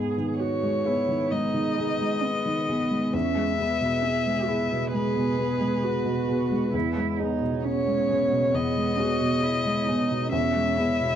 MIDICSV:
0, 0, Header, 1, 5, 480
1, 0, Start_track
1, 0, Tempo, 913242
1, 1649, Time_signature, 4, 2, 24, 8
1, 1650, Tempo, 898204
1, 5933, End_track
2, 0, Start_track
2, 0, Title_t, "Violin"
2, 0, Program_c, 0, 40
2, 210, Note_on_c, 0, 73, 51
2, 688, Note_on_c, 0, 75, 51
2, 696, Note_off_c, 0, 73, 0
2, 1647, Note_on_c, 0, 76, 60
2, 1655, Note_off_c, 0, 75, 0
2, 2609, Note_off_c, 0, 76, 0
2, 2615, Note_on_c, 0, 71, 55
2, 3558, Note_off_c, 0, 71, 0
2, 4062, Note_on_c, 0, 73, 56
2, 4540, Note_on_c, 0, 75, 73
2, 4548, Note_off_c, 0, 73, 0
2, 5492, Note_off_c, 0, 75, 0
2, 5496, Note_on_c, 0, 76, 74
2, 5933, Note_off_c, 0, 76, 0
2, 5933, End_track
3, 0, Start_track
3, 0, Title_t, "Ambient pad"
3, 0, Program_c, 1, 92
3, 0, Note_on_c, 1, 59, 50
3, 0, Note_on_c, 1, 68, 48
3, 0, Note_on_c, 1, 71, 54
3, 1632, Note_off_c, 1, 59, 0
3, 1634, Note_off_c, 1, 68, 0
3, 1634, Note_off_c, 1, 71, 0
3, 1652, Note_on_c, 1, 59, 49
3, 1652, Note_on_c, 1, 71, 47
3, 1653, Note_on_c, 1, 68, 51
3, 3554, Note_off_c, 1, 59, 0
3, 3554, Note_off_c, 1, 71, 0
3, 3555, Note_off_c, 1, 68, 0
3, 3568, Note_on_c, 1, 73, 53
3, 3569, Note_on_c, 1, 68, 55
3, 3573, Note_on_c, 1, 59, 52
3, 5468, Note_off_c, 1, 68, 0
3, 5471, Note_off_c, 1, 59, 0
3, 5489, Note_off_c, 1, 73, 0
3, 5496, Note_on_c, 1, 68, 56
3, 5497, Note_on_c, 1, 73, 54
3, 5500, Note_on_c, 1, 59, 52
3, 5933, Note_off_c, 1, 59, 0
3, 5933, Note_off_c, 1, 68, 0
3, 5933, Note_off_c, 1, 73, 0
3, 5933, End_track
4, 0, Start_track
4, 0, Title_t, "Cello"
4, 0, Program_c, 2, 42
4, 0, Note_on_c, 2, 68, 44
4, 210, Note_on_c, 2, 66, 41
4, 218, Note_off_c, 2, 68, 0
4, 452, Note_on_c, 2, 64, 39
4, 460, Note_off_c, 2, 66, 0
4, 694, Note_on_c, 2, 63, 43
4, 701, Note_off_c, 2, 64, 0
4, 1176, Note_on_c, 2, 59, 37
4, 1184, Note_off_c, 2, 63, 0
4, 1650, Note_off_c, 2, 59, 0
4, 1653, Note_on_c, 2, 61, 38
4, 1888, Note_off_c, 2, 61, 0
4, 1893, Note_on_c, 2, 59, 37
4, 2128, Note_on_c, 2, 68, 46
4, 2136, Note_off_c, 2, 59, 0
4, 2364, Note_on_c, 2, 64, 40
4, 2372, Note_off_c, 2, 68, 0
4, 2603, Note_off_c, 2, 64, 0
4, 2606, Note_on_c, 2, 68, 52
4, 3094, Note_on_c, 2, 66, 47
4, 3102, Note_off_c, 2, 68, 0
4, 3572, Note_off_c, 2, 66, 0
4, 3575, Note_on_c, 2, 64, 44
4, 3813, Note_on_c, 2, 63, 46
4, 3821, Note_off_c, 2, 64, 0
4, 4055, Note_on_c, 2, 61, 50
4, 4063, Note_off_c, 2, 63, 0
4, 4535, Note_on_c, 2, 59, 46
4, 4543, Note_off_c, 2, 61, 0
4, 4772, Note_on_c, 2, 66, 51
4, 4780, Note_off_c, 2, 59, 0
4, 5007, Note_on_c, 2, 64, 43
4, 5015, Note_off_c, 2, 66, 0
4, 5250, Note_on_c, 2, 63, 46
4, 5258, Note_off_c, 2, 64, 0
4, 5483, Note_off_c, 2, 63, 0
4, 5486, Note_on_c, 2, 61, 45
4, 5729, Note_on_c, 2, 64, 58
4, 5737, Note_off_c, 2, 61, 0
4, 5933, Note_off_c, 2, 64, 0
4, 5933, End_track
5, 0, Start_track
5, 0, Title_t, "Felt piano"
5, 0, Program_c, 3, 0
5, 0, Control_c, 3, 64, 127
5, 0, Note_on_c, 3, 44, 37
5, 0, Note_on_c, 3, 56, 27
5, 0, Note_on_c, 3, 59, 24
5, 0, Note_on_c, 3, 68, 29
5, 79, Note_off_c, 3, 59, 0
5, 79, Note_off_c, 3, 68, 0
5, 93, Note_on_c, 3, 51, 28
5, 331, Note_off_c, 3, 56, 0
5, 331, Note_on_c, 3, 56, 26
5, 449, Note_on_c, 3, 59, 26
5, 449, Note_on_c, 3, 68, 28
5, 476, Note_off_c, 3, 51, 0
5, 523, Note_off_c, 3, 56, 0
5, 558, Note_off_c, 3, 59, 0
5, 558, Note_off_c, 3, 68, 0
5, 569, Note_on_c, 3, 51, 32
5, 670, Note_off_c, 3, 44, 0
5, 690, Note_on_c, 3, 56, 30
5, 762, Note_off_c, 3, 51, 0
5, 810, Note_on_c, 3, 51, 29
5, 883, Note_off_c, 3, 56, 0
5, 927, Note_on_c, 3, 59, 27
5, 931, Note_on_c, 3, 68, 28
5, 1004, Note_off_c, 3, 51, 0
5, 1038, Note_off_c, 3, 59, 0
5, 1040, Note_off_c, 3, 68, 0
5, 1054, Note_on_c, 3, 56, 27
5, 1290, Note_on_c, 3, 51, 30
5, 1413, Note_on_c, 3, 59, 28
5, 1414, Note_on_c, 3, 68, 32
5, 1436, Note_off_c, 3, 56, 0
5, 1482, Note_off_c, 3, 51, 0
5, 1520, Note_off_c, 3, 59, 0
5, 1520, Note_off_c, 3, 68, 0
5, 1525, Note_on_c, 3, 56, 28
5, 1647, Note_off_c, 3, 56, 0
5, 1647, Note_on_c, 3, 40, 39
5, 1659, Control_c, 3, 64, 0
5, 1746, Control_c, 3, 64, 127
5, 1766, Note_on_c, 3, 56, 30
5, 1891, Note_on_c, 3, 59, 27
5, 1891, Note_on_c, 3, 68, 28
5, 1960, Note_off_c, 3, 56, 0
5, 1999, Note_off_c, 3, 59, 0
5, 1999, Note_off_c, 3, 68, 0
5, 2008, Note_on_c, 3, 47, 29
5, 2247, Note_on_c, 3, 56, 28
5, 2373, Note_on_c, 3, 68, 31
5, 2374, Note_on_c, 3, 59, 28
5, 2393, Note_off_c, 3, 47, 0
5, 2441, Note_off_c, 3, 56, 0
5, 2480, Note_off_c, 3, 68, 0
5, 2481, Note_off_c, 3, 59, 0
5, 2489, Note_on_c, 3, 47, 31
5, 2588, Note_off_c, 3, 40, 0
5, 2608, Note_on_c, 3, 56, 33
5, 2682, Note_off_c, 3, 47, 0
5, 2731, Note_on_c, 3, 47, 30
5, 2801, Note_off_c, 3, 56, 0
5, 2846, Note_on_c, 3, 59, 28
5, 2850, Note_on_c, 3, 68, 27
5, 2923, Note_off_c, 3, 47, 0
5, 2956, Note_off_c, 3, 59, 0
5, 2958, Note_off_c, 3, 68, 0
5, 2964, Note_on_c, 3, 56, 32
5, 3208, Note_on_c, 3, 47, 31
5, 3328, Note_on_c, 3, 59, 27
5, 3332, Note_on_c, 3, 68, 33
5, 3354, Note_off_c, 3, 56, 0
5, 3404, Note_off_c, 3, 47, 0
5, 3439, Note_off_c, 3, 59, 0
5, 3441, Note_off_c, 3, 68, 0
5, 3450, Note_on_c, 3, 56, 32
5, 3572, Note_off_c, 3, 56, 0
5, 3573, Note_on_c, 3, 40, 40
5, 3585, Control_c, 3, 64, 0
5, 3660, Control_c, 3, 64, 127
5, 3696, Note_on_c, 3, 56, 30
5, 3817, Note_on_c, 3, 59, 29
5, 3820, Note_on_c, 3, 68, 32
5, 3889, Note_off_c, 3, 56, 0
5, 3925, Note_off_c, 3, 59, 0
5, 3927, Note_off_c, 3, 68, 0
5, 3935, Note_on_c, 3, 47, 30
5, 4177, Note_on_c, 3, 56, 29
5, 4295, Note_on_c, 3, 59, 30
5, 4295, Note_on_c, 3, 68, 33
5, 4322, Note_off_c, 3, 47, 0
5, 4370, Note_off_c, 3, 56, 0
5, 4405, Note_off_c, 3, 59, 0
5, 4405, Note_off_c, 3, 68, 0
5, 4414, Note_on_c, 3, 47, 36
5, 4516, Note_off_c, 3, 40, 0
5, 4535, Note_on_c, 3, 40, 39
5, 4608, Note_off_c, 3, 47, 0
5, 4657, Note_on_c, 3, 56, 31
5, 4778, Note_on_c, 3, 59, 32
5, 4778, Note_on_c, 3, 68, 33
5, 4848, Note_off_c, 3, 56, 0
5, 4885, Note_off_c, 3, 59, 0
5, 4885, Note_off_c, 3, 68, 0
5, 4893, Note_on_c, 3, 47, 35
5, 5131, Note_on_c, 3, 56, 36
5, 5250, Note_on_c, 3, 59, 31
5, 5254, Note_on_c, 3, 68, 39
5, 5276, Note_off_c, 3, 47, 0
5, 5324, Note_off_c, 3, 56, 0
5, 5359, Note_off_c, 3, 59, 0
5, 5361, Note_off_c, 3, 68, 0
5, 5375, Note_on_c, 3, 47, 35
5, 5470, Note_off_c, 3, 40, 0
5, 5489, Note_on_c, 3, 40, 45
5, 5503, Control_c, 3, 64, 0
5, 5565, Note_off_c, 3, 47, 0
5, 5576, Control_c, 3, 64, 127
5, 5611, Note_on_c, 3, 56, 33
5, 5730, Note_on_c, 3, 59, 34
5, 5734, Note_on_c, 3, 68, 32
5, 5803, Note_off_c, 3, 56, 0
5, 5838, Note_off_c, 3, 59, 0
5, 5841, Note_off_c, 3, 68, 0
5, 5849, Note_on_c, 3, 47, 37
5, 5933, Note_off_c, 3, 40, 0
5, 5933, Note_off_c, 3, 47, 0
5, 5933, End_track
0, 0, End_of_file